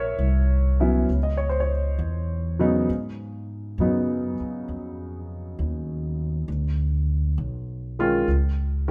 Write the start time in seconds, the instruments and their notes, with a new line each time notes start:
Already playing: upright bass A#1, grand piano A#4 C#5 E5
0.18 upright bass C2
0.80 grand piano F#3 B3 C#4 E4
1.09 upright bass C#2
1.23 grand piano D#5
1.37 grand piano C#5
1.49 grand piano C5
1.60 grand piano C#5
1.99 upright bass E2
2.59 grand piano C#3 F#3 B3 D#4
2.89 upright bass G#2
3.78 upright bass F#2, grand piano C#3 F#3 B3 D#4
4.40 muted upright bass stroke
4.68 upright bass F2
5.59 upright bass D#2
6.48 upright bass D2
7.38 upright bass B1
7.99 grand piano D#3 G#3 C#4 F4
8.28 upright bass C#2